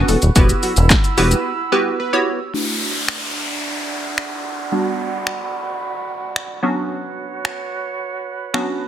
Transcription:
Already playing: B3 C#4 D4 F#4 B4 F#5 C#6
0.08 E1 A4, open hi-hat, shaker
0.22 D#1, closed hi-hat, shaker
0.36 E1 B3 E4 F#4 G4 B4 B5 E6, kick, closed hi-hat, shaker
0.49 closed hi-hat, shaker
0.63 F#4, open hi-hat, shaker
0.76 E1, closed hi-hat, shaker
0.90 kick, snare, clap, closed hi-hat, shaker
1.04 closed hi-hat, shaker
1.17 E1 B3 E4 F#4 G4 B4, open hi-hat, shaker
1.31 closed hi-hat, shaker
1.72 B3 E4 F#4 G4 B4
2.00 B4
2.13 B3 E4 F#4 G4 C#5
2.54 A3 D4 E4 F#4 D5 E5 F#5, downlifter
3.08 finger snap
4.18 finger snap
4.72 G3 B3 D4 F#4 B5
5.27 finger snap
6.36 finger snap
6.63 F#3 B3 C#4 D4 F#4 B4 C#5
7.45 finger snap
8.54 F#3 B3 C#4 D4 F#4, finger snap

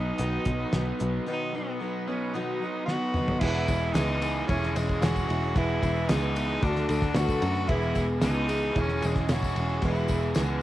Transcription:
Already playing: B1 B2 F#3 B3 D#4 B4 F#5 D#6
0.18 B1 B2 D#3 F#3 B3 D#4 B4, closed hi-hat
0.44 B1 F#3 B3 D#4 B4, kick, closed hi-hat
0.71 B1 F#3 B3 D#4 B4, snare, closed hi-hat
0.99 B1 F#3 B3 D#4 B4, closed hi-hat
1.26 B2 D#3 F#3 B3 D#4 B4
1.32 D#4
1.53 F#3 B3 D#4 B4
1.58 F#3
1.80 F#3 B3 D#4 B4
2.07 F#3 B3 C#4 D#4 B4
2.34 B2 D#3 F#3 B3 D#4 B4
2.60 F#3 D#4 B4
2.65 F#3 B3
2.86 F#3 B3 D#4 F#4, snare
2.90 B4
3.14 F#3 B3 D#4 B4, mid tom
3.28 floor tom
3.39 E1 E2 B2 E3 G#3 B3 E4 G#4 B4 G#5 E6, kick, crash
3.43 E4
3.55 tambourine
3.68 E1 E3 G#3 B3 E4 G#4, kick, ride, tambourine
3.93 C#2 E3 G#3 B3 D#4 E4 G#4 B4, snare, ride, tambourine
4.08 tambourine
4.22 E3 G#3 B3 E4 G#4, ride, tambourine
4.36 tambourine
4.47 E1 E3 G#3 C#4 E4 G#4 C#5 E6, kick, ride, tambourine
4.51 E4 G#4
4.63 snare, tambourine
4.75 E1 G#3 C#4 E4 G#4, ride, tambourine
4.89 kick
5.02 E1 E3 G#3 C#4 E4 F#4 G#4 C#5, snare, ride, tambourine
5.06 G#4
5.16 kick, tambourine
5.29 E1 G#3 C#4 E4 G#4, ride, tambourine
5.44 tambourine
5.54 E1 E2 B2 E3 G#3 B3 E4 G#4 B4 E6, kick, ride
5.58 G#4 B4
5.69 tambourine
5.83 E1 E3 G#3 B3 E4 G#4, kick, ride, tambourine
5.95 tambourine
6.09 C#2 E3 G#3 B3 D#4 E4 G#4 B4, snare, ride, tambourine
6.23 tambourine
6.36 E3 G#3 B3 E4 G#4, ride, tambourine
6.49 tambourine
6.61 D2 D3 F#3 A3 D4 F#4 A4 F#5 D6, kick, ride, tambourine
6.67 F#4 A4
6.76 snare, tambourine
6.89 D2 D4 F#4 A4, ride, tambourine
7.02 kick, snare, tambourine
7.15 D2 D3 F#3 A3 D4 F#4 A4 B4, snare, ride, tambourine
7.29 kick, tambourine
7.42 F#2 A3 D4 F#4 A4, ride, tambourine
7.55 tambourine
7.67 E1 E2 B2 E3 G#3 B3 E4 G#4 B4 G#5 E6, kick, ride
7.82 tambourine
7.95 E1 E3 G#3 B3 E4 G#4, kick, ride, tambourine
8.09 tambourine
8.21 C#2 E3 G#3 B3 D#4 E4 G#4 B4, snare, ride, tambourine
8.35 tambourine
8.48 E3 G#3 B3 E4 G#4, ride, tambourine
8.63 tambourine
8.74 E1 E3 G#3 C#4 E4 G#4 C#5, kick, ride, tambourine
8.78 C#4 G#4
8.89 snare, tambourine
9.01 E1 C#4 E4 G#4, ride, tambourine
9.06 G#3
9.15 kick, snare, tambourine
9.27 E1 E3 G#3 C#4 E4 G#4 C#5, snare, ride, tambourine
9.31 F#4 G#4
9.43 kick, tambourine
9.55 E1 G#3 E4 G#4, ride, tambourine
9.60 C#4
9.69 tambourine
9.82 E1 E2 B2 E3 G#3 B3 E4 G#4 B4, kick, ride, tambourine
9.88 E4
9.95 tambourine
10.08 E1 E3 G#3 B3 E4 G#4, kick, ride, tambourine
10.23 tambourine
10.34 C#2 E3 G#3 B3 E4 G#4 B4, snare, ride, tambourine
10.48 tambourine

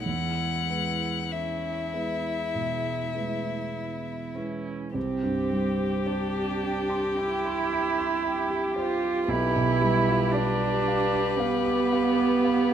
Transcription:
0.05 E2 G#3 E4 F#5
0.68 G#3 E4 B4
1.31 C#4 E4 E5
1.93 G#3 B3 E4 B4
2.54 B2 G#3
3.14 G#3 A3 E4 B4
3.75 B3
4.35 G#3 C#4 E4 B4
4.94 C2 C4 G4
5.23 G2
5.51 G3
5.79 G4
6.06 D4 C5
6.34 G4
6.63 G5
6.90 C6
7.17 E4 G5
7.46 C6
7.73 G5
7.99 C6
8.25 G5
8.50 G4
8.76 F4 C5
9.03 G4
9.28 B1 E4 G4 B4
9.56 B2
9.82 G3
10.07 F4
10.32 D4 D5
10.61 G4
10.88 F5
11.13 D6
11.39 B3 F5
11.65 D6
11.92 F5
12.17 D6
12.44 F5

